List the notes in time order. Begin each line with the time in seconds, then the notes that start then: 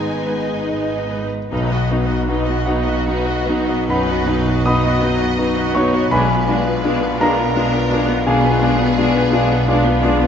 Already playing: G#1 G#2 D#3 G#3 B3 D#4 B4 D#5 G#5
0.26 B4
0.69 D#5
1.11 B4
1.51 B1 B2 F#3 D#4 B4
1.70 B3 F#4 D#5
1.90 F#3 B3 D#4 F#4 B4
2.07 B3 F#4 D#5
2.27 F#3 B3 D#4 F#4 B4
2.45 B3 F#4 D#5
2.66 F#3 B3 D#4 F#4 B4 D#5 F#5
2.85 B3 F#4 D#5
3.06 F#3 B3 D#4 F#4 B4
3.25 B3 F#4 D#5
3.48 F#3 B3 D#4 F#4 B4
3.68 B3 F#4 D#5
3.87 F#2 F#3 D#4 B4 F#5 B5
4.08 B3 F#4 D#5
4.26 F#3 B3 D#4 F#4 B4
4.47 B3 F#4 D#5
4.64 F#3 B3 D#4 F#4 B4 D#5 B5 D#6
4.84 B3 F#4 D#5
5.02 F#3 B3 D#4 F#4 B4
5.20 B3 F#4 D#5
5.38 F#3 B3 D#4 F#4 B4
5.57 B3 F#4 D#5
5.75 F#3 B3 D#4 F#4 B4 C#5 C#6
5.94 B3 F#4 D#5
6.11 B1 B2 G#3 D4 G#4 B4 G#5 B5
6.28 B3
6.32 F4 B4
6.46 G#3 B3 D4 F4 G#4
6.64 B3 F4 B4
6.82 G#3 B3 D4 F4
6.86 D4 G#4
7.01 B3 F4 B4
7.19 G#3 B3 D4 F4 A#4 A#5
7.23 D4 G#4 A#4
7.36 B3
7.41 F4 B4
7.54 G#3 B3 D4 F4
7.58 D4 G#4
7.72 B3 F4
7.76 B4
7.89 G#3 B3 D4 F4
7.94 D4 G#4
8.08 B3 F4 B4
8.24 B2 G#3 D4 G#4 F5 G#5
8.42 B3 F4 B4
8.59 G#3 B3 D4 F4 G#4
8.78 B3 F4 B4
8.96 G#3 B3 D4 F4 G#4
9.14 B3 F4 B4
9.32 G#3 B3 D4 F4 G#4
9.51 B3 F4 B4
9.68 G#3 B3 D4 F4 G#4
9.85 B3 F4 B4
10.03 G#3 B3 D4 F4 G#4
10.20 B3 F4 B4